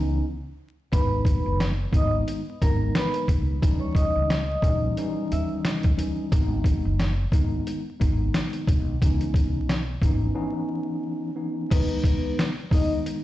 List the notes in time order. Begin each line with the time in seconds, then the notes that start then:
Already playing: C#2 E3 B3 C#4 D#4
0.92 G#1 D#3 G#3 B3 D#4 B4 B5, kick, closed hi-hat
1.25 kick, closed hi-hat
1.46 F#1
1.60 snare, closed hi-hat
1.92 G#1 D#3 G#3 B3 D#4 D#5, kick, closed hi-hat
1.96 D#6
2.28 closed hi-hat
2.62 G#1 D#3 G#3 B3 D#4 A#4 A#5, kick, closed hi-hat
2.95 B4 B5, snare, closed hi-hat
3.14 closed hi-hat
3.28 C#2, kick, closed hi-hat
3.62 D#2 E3 G3 C#4 D#4, kick, closed hi-hat
3.80 C#5 C#6
3.95 D#5 D#6, kick, closed hi-hat
4.15 C#2
4.30 snare, closed hi-hat
4.62 A#1 E3 G3 C#4 D#4, kick, closed hi-hat
4.97 E3 G3 C#4 D#4, closed hi-hat
5.32 D#2 E5 E6, closed hi-hat
5.65 snare, closed hi-hat
5.83 kick, closed hi-hat
5.97 E3 G3 C#4 D#4, closed hi-hat
6.31 G#1 D#3 G#3 B3 D#4, kick, closed hi-hat
6.64 kick, closed hi-hat
6.85 F#1
7.00 snare, closed hi-hat
7.32 G#1 D#3 G#3 B3 D#4, kick, closed hi-hat
7.67 closed hi-hat
8.00 G#1 D#3 G#3 B3 D#4, kick, closed hi-hat
8.34 snare, closed hi-hat
8.53 closed hi-hat
8.67 B1, kick, closed hi-hat
9.02 C#2 E3 B3 C#4 D#4, kick, closed hi-hat
9.21 closed hi-hat
9.34 kick, closed hi-hat
9.55 B1
9.69 snare, closed hi-hat
10.02 G#1 E3 B3 C#4 D#4, kick, closed hi-hat
10.35 E3 B3 C#4 D#4
11.36 E3 B3 C#4 D#4
11.71 D#3 G#3 B3 D#4 B4, kick, closed hi-hat, crash
12.04 kick, closed hi-hat
12.39 snare, closed hi-hat
12.70 D#3 G#3 B3 D#4, kick, open hi-hat
12.74 D#5
13.06 closed hi-hat